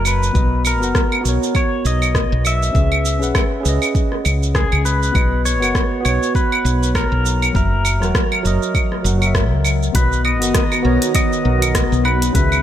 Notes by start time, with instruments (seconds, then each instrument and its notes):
Already playing: fretless electric bass F#1, tine electric piano F#3 F#4 A#4 D#5 F#5
0.05 pedal steel guitar B4, claves, shaker
0.23 shaker
0.33 fretless electric bass B1, tine electric piano B3 F#4 B4 D#5, kick, shaker
0.65 pedal steel guitar A#4, claves, shaker
0.80 fretless electric bass F#1, tine electric piano B3 F#4 A#4 F#5, shaker
0.95 kick, cross-stick, shaker
1.12 claves
1.21 tine electric piano B3 F#4
1.25 fretless electric bass B1, tine electric piano A#4 C#5, shaker
1.43 shaker
1.55 pedal steel guitar C#5, kick, claves, shaker
1.85 fretless electric bass B1, pedal steel guitar D#5, shaker
2.02 claves, shaker
2.15 kick, cross-stick, shaker
2.32 fretless electric bass B1
2.45 pedal steel guitar E5, claves, shaker
2.63 shaker
2.73 fretless electric bass C#2, tine electric piano C#4 G#4 B4, kick, shaker
2.77 tine electric piano E5
2.92 claves
3.05 shaker
3.19 fretless electric bass B1, tine electric piano C#4 G#4 B4 F#5, shaker
3.35 kick, cross-stick, claves, shaker
3.61 tine electric piano C#4 G#4
3.65 fretless electric bass C#2, tine electric piano B4 D#5, shaker
3.82 claves, shaker
3.95 kick, shaker
4.12 cross-stick
4.25 fretless electric bass C#2, claves, shaker
4.43 shaker
4.55 pedal steel guitar G#4, kick, cross-stick, shaker
4.72 fretless electric bass C#2, claves
4.85 pedal steel guitar B4, shaker
5.03 shaker
5.12 fretless electric bass B1, tine electric piano B3 F#4 B4 D#5, kick, claves, shaker
5.45 pedal steel guitar C#5, shaker
5.60 fretless electric bass F#1, tine electric piano B3 F#4 A#4 F#5, claves, shaker
5.75 kick, cross-stick, shaker
6.00 tine electric piano B3 F#4
6.05 fretless electric bass B1, pedal steel guitar C#5, tine electric piano C#5, claves, shaker
6.23 shaker
6.35 pedal steel guitar B4, kick, shaker
6.52 claves
6.65 fretless electric bass B1, shaker
6.83 shaker
6.95 pedal steel guitar A#4, kick, cross-stick, claves, shaker
7.12 fretless electric bass B1
7.26 shaker
7.42 claves, shaker
7.53 fretless electric bass F#1, tine electric piano F#3 F#4 A#4, pedal steel guitar A#4, kick, shaker
7.57 tine electric piano E5
7.85 claves, shaker
8.00 fretless electric bass E1, tine electric piano F#3 F#4 A#4 F#5, cross-stick, shaker
8.15 kick, cross-stick, shaker
8.32 claves
8.43 fretless electric bass F#1, tine electric piano F#3 F#4 A#4, shaker
8.47 tine electric piano D#5
8.62 shaker
8.75 kick, claves, shaker
8.92 cross-stick
9.02 fretless electric bass F#1, tine electric piano F#3 F#4 A#4, shaker
9.06 tine electric piano F#5
9.18 tine electric piano F#3 F#4, claves
9.22 tine electric piano A#4 E5, shaker
9.35 kick, cross-stick, shaker
9.52 fretless electric bass C#2
9.65 claves, shaker
9.83 shaker
9.93 fretless electric bass B1, analog synth pad D#3 B3 F#4 A#5, tine electric piano B3 F#4 B4, pedal steel guitar B4, kick, closed hi-hat, shaker
9.97 tine electric piano D#5
10.12 shaker
10.25 pedal steel guitar D#5, claves
10.39 fretless electric bass F#1, tine electric piano B3 F#4 A#4 F#5, closed hi-hat, shaker
10.55 kick, cross-stick, closed hi-hat, shaker
10.72 claves, shaker
10.82 fretless electric bass B1, tine electric piano B3 F#4 A#4 C#5
11.02 closed hi-hat, shaker
11.15 pedal steel guitar D#5, kick, closed hi-hat, claves, shaker
11.33 shaker
11.43 fretless electric bass B1, tine electric piano B3 F#4 A#4 F#5
11.58 tine electric piano B3 F#4
11.62 tine electric piano A#4 D#5, closed hi-hat, claves, shaker
11.75 kick, cross-stick, closed hi-hat, shaker
11.92 fretless electric bass B1, shaker
12.05 pedal steel guitar B4, claves
12.22 closed hi-hat, shaker
12.33 fretless electric bass C#2, analog synth pad C#3 G#3 B3 E4, tine electric piano C#4 G#4 B4 E5, pedal steel guitar B4, kick, closed hi-hat, shaker
12.52 claves, shaker